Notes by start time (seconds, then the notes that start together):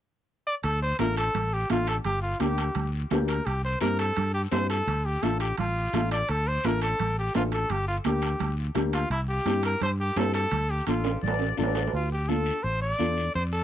0.47 D5
0.63 D2 A4, high conga, high timbale, long guiro
0.82 C5
0.99 A1 A3 D4 F4 A#4, high conga, high timbale, short guiro
1.16 A4, high timbale, short guiro
1.34 A1, high conga, low conga, high timbale, long guiro
1.53 G4
1.69 A1 A3 D4 F4, high conga, high timbale, short guiro
1.87 A4, high timbale, short guiro
2.04 G1 G4, high conga, low conga, high timbale, long guiro
2.22 F4
2.40 D2 A#3 D4 G4, high conga, high timbale, short guiro
2.58 high timbale, short guiro
2.75 D2, high conga, low conga, high timbale, long guiro
3.10 D2 A#3 D4 G4, high conga, low conga, high timbale, low timbale, short guiro
3.28 A#4, high timbale, short guiro
3.45 C2 G4, high conga, high timbale, long guiro
3.64 C5
3.81 G2 C4 E4 G4 A#4, high conga, high timbale, short guiro
3.99 A4, high timbale, short guiro
4.16 G2, high conga, low conga, high timbale, long guiro
4.34 G4
4.51 G2 C4 E4 G4 C5, high conga, high timbale, low timbale, short guiro
4.70 A4, high timbale, short guiro
4.87 D2, high conga, low conga, high timbale, long guiro
5.05 G4
5.22 A1 A3 D4 F4 A4, high conga, high timbale, short guiro
5.40 G4, high timbale, short guiro
5.57 A1 F4, high conga, low conga, high timbale, long guiro
5.93 A1 A3 D4 F4, high conga, low conga, high timbale, short guiro
6.11 D5, high timbale, short guiro
6.29 D2 A4, high conga, high timbale, long guiro
6.47 C5
6.64 A1 A3 D4 F4 A#4, high conga, high timbale, short guiro
6.81 A4, high timbale, short guiro
6.99 A1, high conga, low conga, high timbale, long guiro
7.19 G4
7.34 A1 A3 D4 F4, high conga, high timbale, low timbale, short guiro
7.52 A4, high timbale, short guiro
7.69 G1 G4, high conga, low conga, high timbale, long guiro
7.88 F4
8.04 D2 A#3 D4 G4, high conga, high timbale, short guiro
8.22 high timbale, short guiro
8.39 D2, high conga, low conga, high timbale, long guiro
8.75 D2 A#3 D4 G4, high conga, low conga, high timbale, short guiro
8.93 F4, high timbale, short guiro
9.10 C2 E4, high conga, high timbale, long guiro
9.29 G4
9.46 G2 C4 E4 G4, high conga, high timbale, short guiro
9.63 A#4, high timbale, short guiro
9.81 G2 C5, high conga, low conga, high timbale, long guiro
10.01 G4
10.16 G2 C4 E4 G4 A4, high conga, high timbale, low timbale, short guiro
10.33 A4, high timbale, short guiro
10.51 D2, high conga, low conga, high timbale, long guiro
10.70 G4
10.87 A1 D4 F4 A4, high conga, high timbale, short guiro
11.04 high timbale, short guiro
11.22 A1 D5, high conga, low conga, long guiro
11.28 low timbale
11.39 high timbale
11.57 A1 D4 F4 A4 D5, high conga, low conga, short guiro
11.63 low timbale
11.75 low timbale, short guiro
11.87 low timbale
11.92 D2 F4, high conga, long guiro
12.12 G4
12.28 D4 F4 A4, high conga, short guiro
12.46 short guiro
12.63 A1 C5, high conga, long guiro
12.82 D5
12.98 E2 D4 F4 A4, high conga, short guiro
13.17 short guiro
13.34 F2 C5, high conga, long guiro
13.52 A4